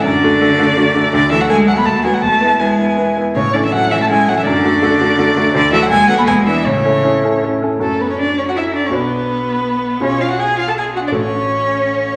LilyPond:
<<
  \new Staff \with { instrumentName = "Violin" } { \time 3/4 \key a \major \tempo 4 = 163 d''2. | d''8 e''16 fis''16 gis''8 fis''16 b''16 a''8 gis''16 fis''16 | a''4 gis''4. r8 | cis''8 d''16 e''16 fis''8 e''16 a''16 gis''8 fis''16 e''16 |
d''2. | d''8 e''16 fis''16 gis''8 fis''16 b''16 gis''8 e''8 | cis''2 r4 | \key fis \minor a'8 b'16 cis''16 d''8 cis''16 fis''16 e''8 d''16 cis''16 |
b'2. | cis''8 eis''16 fis''16 gis''8 eis''16 a''16 gis''8 fis''16 d''16 | cis''2. | }
  \new Staff \with { instrumentName = "Grand piano" } { \time 3/4 \key a \major fis,8 <a fis' a'>8 <a fis' a'>8 <a fis' a'>8 <a fis' a'>8 <a fis' a'>8 | d,8 <a fis' a'>8 <a fis' a'>8 <a fis' a'>8 dis,8 <fis fis' b'>8 | e,8 <b e' b'>8 <b e' b'>8 <b e' b'>8 <b e' b'>8 <b e' b'>8 | a,8 <cis' e' a'>8 <cis' e' a'>8 <cis' e' a'>8 <cis' e' a'>8 <cis' e' a'>8 |
fis,8 <a fis' a'>8 <a fis' a'>8 <a fis' a'>8 <a fis' a'>8 <a fis' a'>8 | d,8 <a fis' a'>8 dis,8 <b fis' a'>8 e,8 <d' e' b'>8 | a,8 <cis' e' a'>8 <cis' e' a'>8 <cis' e' a'>8 <cis' e' a'>8 <cis' e' a'>8 | \key fis \minor <fis, cis' fis' a'>2. |
<b,, d' fis'>2. | <b,, cis' eis' gis'>2. | <a,, a fis' a'>2. | }
  \new Staff \with { instrumentName = "Cello" } { \clef bass \time 3/4 \key a \major d2. | d8 e16 fis16 gis8 fis16 b16 a8 gis16 fis16 | a4 gis4. r8 | cis8 d16 e16 fis8 e16 a16 gis8 fis16 e16 |
d2. | d8 e16 fis16 gis8 fis16 b16 gis8 e8 | cis2 r4 | \key fis \minor a8 b16 cis'16 d'8 cis'16 fis'16 e'8 d'16 cis'16 |
b2. | cis'8 eis'16 fis'16 gis'8 eis'16 a'16 gis'8 fis'16 d'16 | cis'2. | }
>>